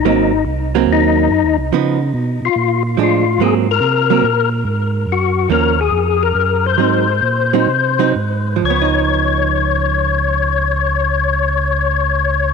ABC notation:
X:1
M:4/4
L:1/8
Q:"Swing" 1/4=141
K:Abdor
V:1 name="Tonewheel organ"
E2 z2 E3 z | z3 F2 z F2 | A B4 z3 | G2 B A2 B2 =c- |
=c6 z2 | d8- | d8 |]
V:2 name="Hollow-body jazz guitar"
[G,B,=C] z2 [G,B,C]3 z2 | [F,CE] z4 z [F,A,=D] z | [G,B,=C] z2 [G,B,C] z4 | z2 [F,B,D] z4 z |
[G,=CE] z2 [G,CE] z [G,CE] z2 | [F,CE]8- | [F,CE]8 |]
V:3 name="Tonewheel organ" clef=bass
A,,,2 =C,,2 E,,2 (3G,, E,, C,, | D,2 C, C, B,,2 =A,,2 | A,,2 =C,2 B,,2 A,,2 | G,,2 E,,2 F,,2 G,,2 |
A,,2 B,,2 =C,2 A,,2 | D,,8- | D,,8 |]